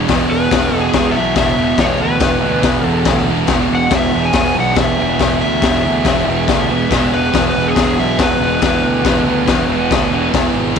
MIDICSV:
0, 0, Header, 1, 5, 480
1, 0, Start_track
1, 0, Tempo, 427046
1, 581, Time_signature, 4, 2, 24, 8
1, 12129, End_track
2, 0, Start_track
2, 0, Title_t, "Electric slide guitar"
2, 0, Program_c, 0, 29
2, 353, Note_on_c, 0, 71, 94
2, 836, Note_off_c, 0, 71, 0
2, 836, Note_on_c, 0, 69, 94
2, 904, Note_on_c, 0, 68, 91
2, 963, Note_off_c, 0, 69, 0
2, 1251, Note_on_c, 0, 76, 94
2, 1292, Note_off_c, 0, 68, 0
2, 1522, Note_off_c, 0, 76, 0
2, 1548, Note_on_c, 0, 76, 91
2, 2023, Note_on_c, 0, 73, 92
2, 2035, Note_off_c, 0, 76, 0
2, 2265, Note_off_c, 0, 73, 0
2, 2267, Note_on_c, 0, 71, 80
2, 3211, Note_off_c, 0, 71, 0
2, 3211, Note_on_c, 0, 69, 80
2, 3651, Note_off_c, 0, 69, 0
2, 4212, Note_on_c, 0, 78, 92
2, 4436, Note_off_c, 0, 78, 0
2, 4448, Note_on_c, 0, 76, 96
2, 4779, Note_on_c, 0, 80, 105
2, 4798, Note_off_c, 0, 76, 0
2, 5143, Note_off_c, 0, 80, 0
2, 5172, Note_on_c, 0, 78, 95
2, 5386, Note_off_c, 0, 78, 0
2, 5390, Note_on_c, 0, 76, 93
2, 6054, Note_off_c, 0, 76, 0
2, 6084, Note_on_c, 0, 76, 103
2, 8023, Note_on_c, 0, 71, 91
2, 8065, Note_off_c, 0, 76, 0
2, 8352, Note_off_c, 0, 71, 0
2, 8423, Note_on_c, 0, 71, 83
2, 8632, Note_on_c, 0, 68, 87
2, 8644, Note_off_c, 0, 71, 0
2, 8958, Note_off_c, 0, 68, 0
2, 8986, Note_on_c, 0, 76, 85
2, 9203, Note_on_c, 0, 71, 73
2, 9227, Note_off_c, 0, 76, 0
2, 11574, Note_off_c, 0, 71, 0
2, 12129, End_track
3, 0, Start_track
3, 0, Title_t, "Distorted electric guitar"
3, 0, Program_c, 1, 30
3, 0, Note_on_c, 1, 47, 66
3, 0, Note_on_c, 1, 52, 74
3, 110, Note_on_c, 1, 40, 69
3, 119, Note_off_c, 1, 47, 0
3, 133, Note_on_c, 1, 47, 69
3, 138, Note_off_c, 1, 52, 0
3, 142, Note_on_c, 1, 52, 83
3, 566, Note_off_c, 1, 40, 0
3, 570, Note_off_c, 1, 47, 0
3, 571, Note_on_c, 1, 40, 89
3, 584, Note_on_c, 1, 47, 100
3, 597, Note_off_c, 1, 52, 0
3, 601, Note_on_c, 1, 52, 96
3, 816, Note_off_c, 1, 52, 0
3, 820, Note_on_c, 1, 52, 70
3, 837, Note_off_c, 1, 47, 0
3, 851, Note_on_c, 1, 47, 50
3, 1061, Note_off_c, 1, 40, 0
3, 1065, Note_on_c, 1, 40, 96
3, 1071, Note_off_c, 1, 47, 0
3, 1084, Note_on_c, 1, 47, 103
3, 1097, Note_off_c, 1, 52, 0
3, 1101, Note_on_c, 1, 52, 96
3, 1287, Note_off_c, 1, 52, 0
3, 1291, Note_on_c, 1, 52, 68
3, 1314, Note_off_c, 1, 47, 0
3, 1327, Note_on_c, 1, 47, 59
3, 1769, Note_off_c, 1, 52, 0
3, 1773, Note_on_c, 1, 52, 72
3, 1794, Note_off_c, 1, 47, 0
3, 1808, Note_on_c, 1, 47, 66
3, 2007, Note_off_c, 1, 40, 0
3, 2011, Note_on_c, 1, 40, 67
3, 2018, Note_off_c, 1, 47, 0
3, 2032, Note_on_c, 1, 47, 73
3, 2042, Note_off_c, 1, 52, 0
3, 2047, Note_on_c, 1, 52, 74
3, 2469, Note_off_c, 1, 40, 0
3, 2474, Note_on_c, 1, 40, 89
3, 2484, Note_off_c, 1, 47, 0
3, 2497, Note_on_c, 1, 47, 98
3, 2514, Note_off_c, 1, 52, 0
3, 2518, Note_on_c, 1, 52, 99
3, 2710, Note_off_c, 1, 52, 0
3, 2714, Note_on_c, 1, 52, 69
3, 2731, Note_off_c, 1, 47, 0
3, 2744, Note_on_c, 1, 47, 55
3, 2947, Note_off_c, 1, 40, 0
3, 2952, Note_on_c, 1, 40, 92
3, 2958, Note_off_c, 1, 47, 0
3, 2971, Note_on_c, 1, 47, 93
3, 2980, Note_off_c, 1, 52, 0
3, 2985, Note_on_c, 1, 52, 112
3, 3185, Note_off_c, 1, 52, 0
3, 3189, Note_on_c, 1, 52, 69
3, 3203, Note_off_c, 1, 47, 0
3, 3216, Note_on_c, 1, 47, 57
3, 3679, Note_off_c, 1, 52, 0
3, 3683, Note_on_c, 1, 52, 77
3, 3709, Note_off_c, 1, 47, 0
3, 3723, Note_on_c, 1, 47, 59
3, 3901, Note_off_c, 1, 40, 0
3, 3905, Note_on_c, 1, 40, 72
3, 3915, Note_off_c, 1, 47, 0
3, 3929, Note_on_c, 1, 47, 76
3, 3947, Note_off_c, 1, 52, 0
3, 3951, Note_on_c, 1, 52, 83
3, 4400, Note_off_c, 1, 40, 0
3, 4404, Note_on_c, 1, 40, 82
3, 4412, Note_off_c, 1, 47, 0
3, 4426, Note_on_c, 1, 47, 95
3, 4432, Note_off_c, 1, 52, 0
3, 4436, Note_on_c, 1, 52, 105
3, 4644, Note_off_c, 1, 52, 0
3, 4649, Note_on_c, 1, 52, 61
3, 4670, Note_off_c, 1, 47, 0
3, 4683, Note_on_c, 1, 47, 51
3, 4877, Note_off_c, 1, 40, 0
3, 4881, Note_on_c, 1, 40, 94
3, 4886, Note_off_c, 1, 47, 0
3, 4900, Note_on_c, 1, 47, 91
3, 4912, Note_off_c, 1, 52, 0
3, 4917, Note_on_c, 1, 52, 101
3, 5117, Note_off_c, 1, 52, 0
3, 5121, Note_on_c, 1, 52, 72
3, 5133, Note_off_c, 1, 47, 0
3, 5147, Note_on_c, 1, 47, 61
3, 5597, Note_off_c, 1, 52, 0
3, 5602, Note_on_c, 1, 52, 83
3, 5632, Note_off_c, 1, 47, 0
3, 5645, Note_on_c, 1, 47, 66
3, 5819, Note_off_c, 1, 40, 0
3, 5823, Note_on_c, 1, 40, 72
3, 5824, Note_off_c, 1, 47, 0
3, 5838, Note_on_c, 1, 47, 74
3, 5856, Note_off_c, 1, 52, 0
3, 5861, Note_on_c, 1, 52, 80
3, 6324, Note_off_c, 1, 40, 0
3, 6328, Note_on_c, 1, 40, 91
3, 6329, Note_off_c, 1, 47, 0
3, 6342, Note_on_c, 1, 47, 102
3, 6353, Note_off_c, 1, 52, 0
3, 6358, Note_on_c, 1, 52, 107
3, 6552, Note_off_c, 1, 52, 0
3, 6556, Note_on_c, 1, 52, 68
3, 6577, Note_off_c, 1, 47, 0
3, 6591, Note_on_c, 1, 47, 52
3, 6799, Note_off_c, 1, 40, 0
3, 6803, Note_on_c, 1, 40, 98
3, 6809, Note_off_c, 1, 47, 0
3, 6823, Note_on_c, 1, 47, 99
3, 6834, Note_off_c, 1, 52, 0
3, 6838, Note_on_c, 1, 52, 99
3, 7024, Note_off_c, 1, 52, 0
3, 7029, Note_on_c, 1, 52, 75
3, 7050, Note_off_c, 1, 47, 0
3, 7064, Note_on_c, 1, 47, 58
3, 7518, Note_off_c, 1, 52, 0
3, 7523, Note_on_c, 1, 52, 78
3, 7541, Note_off_c, 1, 47, 0
3, 7554, Note_on_c, 1, 47, 64
3, 7752, Note_off_c, 1, 40, 0
3, 7757, Note_on_c, 1, 40, 70
3, 7769, Note_off_c, 1, 47, 0
3, 7783, Note_on_c, 1, 47, 76
3, 7788, Note_off_c, 1, 52, 0
3, 7792, Note_on_c, 1, 52, 79
3, 8228, Note_off_c, 1, 40, 0
3, 8232, Note_on_c, 1, 40, 98
3, 8245, Note_off_c, 1, 47, 0
3, 8258, Note_on_c, 1, 47, 101
3, 8263, Note_off_c, 1, 52, 0
3, 8267, Note_on_c, 1, 52, 117
3, 8486, Note_off_c, 1, 52, 0
3, 8491, Note_on_c, 1, 52, 72
3, 8519, Note_off_c, 1, 47, 0
3, 8533, Note_on_c, 1, 47, 59
3, 8723, Note_off_c, 1, 40, 0
3, 8728, Note_on_c, 1, 40, 86
3, 8742, Note_off_c, 1, 47, 0
3, 8756, Note_on_c, 1, 47, 90
3, 8757, Note_off_c, 1, 52, 0
3, 8762, Note_on_c, 1, 52, 102
3, 8947, Note_off_c, 1, 52, 0
3, 8952, Note_on_c, 1, 52, 65
3, 8981, Note_off_c, 1, 47, 0
3, 8995, Note_on_c, 1, 47, 57
3, 9434, Note_off_c, 1, 52, 0
3, 9438, Note_on_c, 1, 52, 83
3, 9464, Note_off_c, 1, 47, 0
3, 9478, Note_on_c, 1, 47, 63
3, 9666, Note_off_c, 1, 40, 0
3, 9670, Note_off_c, 1, 47, 0
3, 9670, Note_on_c, 1, 40, 73
3, 9683, Note_on_c, 1, 47, 76
3, 9696, Note_off_c, 1, 52, 0
3, 9700, Note_on_c, 1, 52, 80
3, 10136, Note_off_c, 1, 40, 0
3, 10150, Note_on_c, 1, 40, 87
3, 10165, Note_off_c, 1, 47, 0
3, 10169, Note_off_c, 1, 52, 0
3, 10178, Note_on_c, 1, 47, 104
3, 10182, Note_on_c, 1, 52, 108
3, 10388, Note_off_c, 1, 52, 0
3, 10402, Note_on_c, 1, 52, 69
3, 10427, Note_off_c, 1, 47, 0
3, 10441, Note_on_c, 1, 47, 56
3, 10637, Note_off_c, 1, 40, 0
3, 10650, Note_on_c, 1, 40, 96
3, 10656, Note_off_c, 1, 47, 0
3, 10669, Note_on_c, 1, 47, 88
3, 10674, Note_off_c, 1, 52, 0
3, 10687, Note_on_c, 1, 52, 109
3, 10883, Note_off_c, 1, 52, 0
3, 10896, Note_on_c, 1, 52, 64
3, 10921, Note_off_c, 1, 47, 0
3, 10934, Note_on_c, 1, 47, 57
3, 11137, Note_off_c, 1, 40, 0
3, 11365, Note_off_c, 1, 52, 0
3, 11378, Note_on_c, 1, 52, 77
3, 11399, Note_off_c, 1, 47, 0
3, 11413, Note_on_c, 1, 47, 68
3, 11624, Note_on_c, 1, 40, 72
3, 11625, Note_off_c, 1, 47, 0
3, 11638, Note_on_c, 1, 47, 72
3, 11647, Note_off_c, 1, 52, 0
3, 11661, Note_on_c, 1, 52, 77
3, 12092, Note_off_c, 1, 40, 0
3, 12096, Note_off_c, 1, 47, 0
3, 12100, Note_off_c, 1, 52, 0
3, 12129, End_track
4, 0, Start_track
4, 0, Title_t, "Fingered electric bass"
4, 0, Program_c, 2, 33
4, 101, Note_on_c, 2, 28, 92
4, 326, Note_off_c, 2, 28, 0
4, 332, Note_on_c, 2, 28, 87
4, 561, Note_off_c, 2, 28, 0
4, 580, Note_on_c, 2, 28, 85
4, 805, Note_off_c, 2, 28, 0
4, 812, Note_on_c, 2, 28, 84
4, 1040, Note_off_c, 2, 28, 0
4, 1054, Note_on_c, 2, 28, 90
4, 1276, Note_off_c, 2, 28, 0
4, 1283, Note_on_c, 2, 35, 86
4, 1510, Note_off_c, 2, 35, 0
4, 1516, Note_on_c, 2, 28, 85
4, 1751, Note_off_c, 2, 28, 0
4, 1762, Note_on_c, 2, 28, 89
4, 1982, Note_off_c, 2, 28, 0
4, 1988, Note_on_c, 2, 28, 88
4, 2226, Note_off_c, 2, 28, 0
4, 2243, Note_on_c, 2, 38, 86
4, 2468, Note_off_c, 2, 38, 0
4, 2475, Note_on_c, 2, 28, 93
4, 2709, Note_off_c, 2, 28, 0
4, 2714, Note_on_c, 2, 38, 86
4, 2947, Note_off_c, 2, 38, 0
4, 2953, Note_on_c, 2, 28, 81
4, 3187, Note_off_c, 2, 28, 0
4, 3202, Note_on_c, 2, 28, 85
4, 3423, Note_off_c, 2, 28, 0
4, 3429, Note_on_c, 2, 38, 83
4, 3664, Note_off_c, 2, 38, 0
4, 3679, Note_on_c, 2, 28, 92
4, 3904, Note_off_c, 2, 28, 0
4, 3910, Note_on_c, 2, 28, 89
4, 4144, Note_off_c, 2, 28, 0
4, 4165, Note_on_c, 2, 28, 82
4, 4392, Note_off_c, 2, 28, 0
4, 4399, Note_on_c, 2, 28, 80
4, 4629, Note_off_c, 2, 28, 0
4, 4660, Note_on_c, 2, 28, 80
4, 4862, Note_off_c, 2, 28, 0
4, 4868, Note_on_c, 2, 28, 89
4, 5103, Note_off_c, 2, 28, 0
4, 5126, Note_on_c, 2, 35, 85
4, 5339, Note_off_c, 2, 35, 0
4, 5346, Note_on_c, 2, 28, 91
4, 5581, Note_off_c, 2, 28, 0
4, 5626, Note_on_c, 2, 28, 87
4, 5830, Note_off_c, 2, 28, 0
4, 5836, Note_on_c, 2, 28, 84
4, 6067, Note_off_c, 2, 28, 0
4, 6099, Note_on_c, 2, 38, 78
4, 6314, Note_off_c, 2, 38, 0
4, 6321, Note_on_c, 2, 28, 88
4, 6549, Note_off_c, 2, 28, 0
4, 6563, Note_on_c, 2, 38, 83
4, 6786, Note_off_c, 2, 38, 0
4, 6793, Note_on_c, 2, 28, 89
4, 7025, Note_off_c, 2, 28, 0
4, 7061, Note_on_c, 2, 28, 91
4, 7272, Note_off_c, 2, 28, 0
4, 7279, Note_on_c, 2, 38, 95
4, 7509, Note_off_c, 2, 38, 0
4, 7543, Note_on_c, 2, 28, 87
4, 7753, Note_off_c, 2, 28, 0
4, 7760, Note_on_c, 2, 28, 91
4, 7990, Note_off_c, 2, 28, 0
4, 8019, Note_on_c, 2, 28, 86
4, 8240, Note_off_c, 2, 28, 0
4, 8246, Note_on_c, 2, 28, 87
4, 8474, Note_off_c, 2, 28, 0
4, 8493, Note_on_c, 2, 28, 87
4, 8718, Note_off_c, 2, 28, 0
4, 8728, Note_on_c, 2, 28, 93
4, 8955, Note_off_c, 2, 28, 0
4, 8968, Note_on_c, 2, 35, 88
4, 9193, Note_off_c, 2, 35, 0
4, 9200, Note_on_c, 2, 28, 90
4, 9425, Note_off_c, 2, 28, 0
4, 9431, Note_on_c, 2, 28, 88
4, 9668, Note_off_c, 2, 28, 0
4, 9685, Note_on_c, 2, 28, 91
4, 9907, Note_off_c, 2, 28, 0
4, 9914, Note_on_c, 2, 38, 85
4, 10151, Note_off_c, 2, 38, 0
4, 10168, Note_on_c, 2, 28, 85
4, 10382, Note_off_c, 2, 28, 0
4, 10389, Note_on_c, 2, 38, 79
4, 10629, Note_off_c, 2, 38, 0
4, 10649, Note_on_c, 2, 28, 86
4, 10880, Note_off_c, 2, 28, 0
4, 10887, Note_on_c, 2, 28, 93
4, 11120, Note_off_c, 2, 28, 0
4, 11135, Note_on_c, 2, 38, 89
4, 11356, Note_off_c, 2, 38, 0
4, 11363, Note_on_c, 2, 28, 91
4, 11599, Note_off_c, 2, 28, 0
4, 11615, Note_on_c, 2, 28, 86
4, 11833, Note_off_c, 2, 28, 0
4, 11840, Note_on_c, 2, 32, 78
4, 12078, Note_off_c, 2, 32, 0
4, 12089, Note_on_c, 2, 33, 88
4, 12129, Note_off_c, 2, 33, 0
4, 12129, End_track
5, 0, Start_track
5, 0, Title_t, "Drums"
5, 90, Note_on_c, 9, 46, 64
5, 100, Note_on_c, 9, 36, 109
5, 103, Note_on_c, 9, 38, 107
5, 203, Note_off_c, 9, 46, 0
5, 213, Note_off_c, 9, 36, 0
5, 215, Note_off_c, 9, 38, 0
5, 578, Note_on_c, 9, 36, 121
5, 578, Note_on_c, 9, 46, 65
5, 590, Note_on_c, 9, 38, 118
5, 690, Note_off_c, 9, 36, 0
5, 690, Note_off_c, 9, 46, 0
5, 703, Note_off_c, 9, 38, 0
5, 1047, Note_on_c, 9, 46, 55
5, 1053, Note_on_c, 9, 36, 111
5, 1059, Note_on_c, 9, 38, 116
5, 1159, Note_off_c, 9, 46, 0
5, 1165, Note_off_c, 9, 36, 0
5, 1172, Note_off_c, 9, 38, 0
5, 1520, Note_on_c, 9, 46, 59
5, 1528, Note_on_c, 9, 36, 110
5, 1533, Note_on_c, 9, 38, 110
5, 1633, Note_off_c, 9, 46, 0
5, 1640, Note_off_c, 9, 36, 0
5, 1645, Note_off_c, 9, 38, 0
5, 1996, Note_on_c, 9, 46, 51
5, 2001, Note_on_c, 9, 36, 110
5, 2008, Note_on_c, 9, 38, 105
5, 2108, Note_off_c, 9, 46, 0
5, 2113, Note_off_c, 9, 36, 0
5, 2121, Note_off_c, 9, 38, 0
5, 2470, Note_on_c, 9, 46, 57
5, 2479, Note_on_c, 9, 36, 112
5, 2482, Note_on_c, 9, 38, 113
5, 2582, Note_off_c, 9, 46, 0
5, 2592, Note_off_c, 9, 36, 0
5, 2595, Note_off_c, 9, 38, 0
5, 2954, Note_on_c, 9, 46, 53
5, 2959, Note_on_c, 9, 36, 114
5, 2966, Note_on_c, 9, 38, 116
5, 3066, Note_off_c, 9, 46, 0
5, 3071, Note_off_c, 9, 36, 0
5, 3079, Note_off_c, 9, 38, 0
5, 3426, Note_on_c, 9, 46, 61
5, 3434, Note_on_c, 9, 36, 115
5, 3438, Note_on_c, 9, 38, 110
5, 3538, Note_off_c, 9, 46, 0
5, 3546, Note_off_c, 9, 36, 0
5, 3551, Note_off_c, 9, 38, 0
5, 3901, Note_on_c, 9, 46, 56
5, 3912, Note_on_c, 9, 36, 112
5, 3914, Note_on_c, 9, 38, 106
5, 4014, Note_off_c, 9, 46, 0
5, 4024, Note_off_c, 9, 36, 0
5, 4026, Note_off_c, 9, 38, 0
5, 4387, Note_on_c, 9, 46, 67
5, 4393, Note_on_c, 9, 36, 123
5, 4399, Note_on_c, 9, 38, 113
5, 4499, Note_off_c, 9, 46, 0
5, 4506, Note_off_c, 9, 36, 0
5, 4512, Note_off_c, 9, 38, 0
5, 4863, Note_on_c, 9, 46, 60
5, 4874, Note_on_c, 9, 36, 109
5, 4876, Note_on_c, 9, 38, 108
5, 4976, Note_off_c, 9, 46, 0
5, 4987, Note_off_c, 9, 36, 0
5, 4988, Note_off_c, 9, 38, 0
5, 5344, Note_on_c, 9, 46, 59
5, 5356, Note_on_c, 9, 36, 109
5, 5357, Note_on_c, 9, 38, 115
5, 5457, Note_off_c, 9, 46, 0
5, 5468, Note_off_c, 9, 36, 0
5, 5469, Note_off_c, 9, 38, 0
5, 5838, Note_on_c, 9, 36, 107
5, 5839, Note_on_c, 9, 46, 54
5, 5851, Note_on_c, 9, 38, 105
5, 5951, Note_off_c, 9, 36, 0
5, 5951, Note_off_c, 9, 46, 0
5, 5964, Note_off_c, 9, 38, 0
5, 6318, Note_on_c, 9, 36, 119
5, 6321, Note_on_c, 9, 46, 57
5, 6333, Note_on_c, 9, 38, 110
5, 6431, Note_off_c, 9, 36, 0
5, 6433, Note_off_c, 9, 46, 0
5, 6446, Note_off_c, 9, 38, 0
5, 6796, Note_on_c, 9, 46, 54
5, 6799, Note_on_c, 9, 36, 105
5, 6809, Note_on_c, 9, 38, 115
5, 6909, Note_off_c, 9, 46, 0
5, 6912, Note_off_c, 9, 36, 0
5, 6921, Note_off_c, 9, 38, 0
5, 7284, Note_on_c, 9, 36, 114
5, 7284, Note_on_c, 9, 46, 56
5, 7296, Note_on_c, 9, 38, 109
5, 7396, Note_off_c, 9, 36, 0
5, 7396, Note_off_c, 9, 46, 0
5, 7409, Note_off_c, 9, 38, 0
5, 7764, Note_on_c, 9, 36, 107
5, 7766, Note_on_c, 9, 46, 57
5, 7778, Note_on_c, 9, 38, 101
5, 7877, Note_off_c, 9, 36, 0
5, 7878, Note_off_c, 9, 46, 0
5, 7890, Note_off_c, 9, 38, 0
5, 8247, Note_on_c, 9, 36, 115
5, 8248, Note_on_c, 9, 46, 63
5, 8260, Note_on_c, 9, 38, 115
5, 8359, Note_off_c, 9, 36, 0
5, 8360, Note_off_c, 9, 46, 0
5, 8373, Note_off_c, 9, 38, 0
5, 8722, Note_on_c, 9, 46, 63
5, 8725, Note_on_c, 9, 36, 106
5, 8735, Note_on_c, 9, 38, 109
5, 8835, Note_off_c, 9, 46, 0
5, 8837, Note_off_c, 9, 36, 0
5, 8847, Note_off_c, 9, 38, 0
5, 9200, Note_on_c, 9, 46, 61
5, 9206, Note_on_c, 9, 36, 116
5, 9213, Note_on_c, 9, 38, 113
5, 9313, Note_off_c, 9, 46, 0
5, 9318, Note_off_c, 9, 36, 0
5, 9325, Note_off_c, 9, 38, 0
5, 9682, Note_on_c, 9, 46, 57
5, 9688, Note_on_c, 9, 36, 111
5, 9695, Note_on_c, 9, 38, 111
5, 9795, Note_off_c, 9, 46, 0
5, 9801, Note_off_c, 9, 36, 0
5, 9807, Note_off_c, 9, 38, 0
5, 10170, Note_on_c, 9, 36, 118
5, 10170, Note_on_c, 9, 46, 62
5, 10183, Note_on_c, 9, 38, 122
5, 10283, Note_off_c, 9, 36, 0
5, 10283, Note_off_c, 9, 46, 0
5, 10295, Note_off_c, 9, 38, 0
5, 10645, Note_on_c, 9, 46, 52
5, 10652, Note_on_c, 9, 36, 101
5, 10657, Note_on_c, 9, 38, 105
5, 10757, Note_off_c, 9, 46, 0
5, 10765, Note_off_c, 9, 36, 0
5, 10769, Note_off_c, 9, 38, 0
5, 11137, Note_on_c, 9, 36, 116
5, 11139, Note_on_c, 9, 46, 52
5, 11151, Note_on_c, 9, 38, 117
5, 11250, Note_off_c, 9, 36, 0
5, 11251, Note_off_c, 9, 46, 0
5, 11263, Note_off_c, 9, 38, 0
5, 11617, Note_on_c, 9, 46, 53
5, 11620, Note_on_c, 9, 36, 107
5, 11629, Note_on_c, 9, 38, 113
5, 11729, Note_off_c, 9, 46, 0
5, 11733, Note_off_c, 9, 36, 0
5, 11741, Note_off_c, 9, 38, 0
5, 12092, Note_on_c, 9, 49, 64
5, 12129, Note_off_c, 9, 49, 0
5, 12129, End_track
0, 0, End_of_file